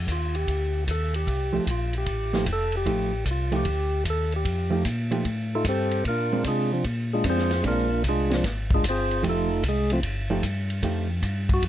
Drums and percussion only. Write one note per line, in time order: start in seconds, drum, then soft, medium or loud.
0.08 kick soft
0.08 hi-hat pedal medium
0.08 ride medium
0.35 ride soft
0.47 kick soft
0.47 ride medium
0.87 kick soft
0.87 hi-hat pedal medium
0.87 ride medium
1.14 ride soft
1.27 kick soft
1.27 ride soft
1.67 kick soft
1.67 hi-hat pedal medium
1.67 ride medium
1.93 ride soft
2.06 kick soft
2.06 ride medium
2.33 snare soft
2.46 kick soft
2.46 hi-hat pedal medium
2.46 ride medium
2.72 ride soft
2.86 kick soft
2.86 ride medium
3.25 kick soft
3.25 hi-hat pedal medium
3.25 ride medium
3.52 ride soft
3.65 kick soft
3.65 ride medium
4.05 kick soft
4.05 hi-hat pedal medium
4.05 ride medium
4.32 ride soft
4.45 kick soft
4.45 ride medium
4.85 kick soft
4.85 hi-hat pedal medium
4.85 ride medium
5.11 ride soft
5.25 kick soft
5.25 ride medium
5.65 kick soft
5.65 hi-hat pedal medium
5.65 ride medium
5.91 ride soft
6.05 kick soft
6.05 ride soft
6.44 kick soft
6.44 hi-hat pedal medium
6.44 ride medium
6.84 kick soft
6.84 ride medium
7.24 kick soft
7.24 hi-hat pedal medium
7.24 ride medium
7.37 snare soft
7.51 snare soft
7.51 ride soft
7.64 kick soft
7.64 ride medium
8.04 kick soft
8.04 hi-hat pedal medium
8.04 ride medium
8.31 snare medium
8.31 ride soft
8.44 kick soft
8.44 snare soft
8.44 ride medium
8.71 kick medium
8.84 kick soft
8.84 hi-hat pedal medium
8.84 ride medium
9.11 ride soft
9.23 kick soft
9.23 ride medium
9.63 kick soft
9.63 hi-hat pedal soft
9.63 ride medium
9.90 ride soft
10.03 kick soft
10.03 ride medium
10.43 kick soft
10.43 hi-hat pedal soft
10.43 ride medium
10.70 ride soft
10.83 kick soft
10.83 ride medium
11.23 kick soft
11.23 hi-hat pedal soft
11.23 ride medium
11.49 kick soft
11.49 ride soft
11.62 kick soft
11.62 ride medium